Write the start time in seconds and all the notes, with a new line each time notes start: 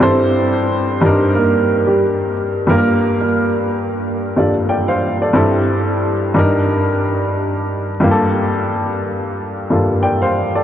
Already playing: D5
0.00 G2 G3 C4 E4 A4 C5
1.01 G2 G3 D4 D#4
1.06 A#4
1.35 A#3 A#4
1.87 G3 G4
2.67 G2 G3 A#3 F4 A#4
2.71 G4
2.78 A#4
3.20 A#3 A#4
4.36 G2 G3 A#3 D4 F4 A4 D5
4.69 D5 G5
4.88 C5 F5
5.22 A4 D5
5.33 G2 G3 C4 E4 A4
6.34 G2 G3 D4 D#4
6.39 A#4
8.00 G2 G3 A#3 F4
8.05 G4
8.11 A4
9.70 G2 G3 A#3 F4 A4
10.03 D5 G5
10.22 C5 F5
10.55 A4 D5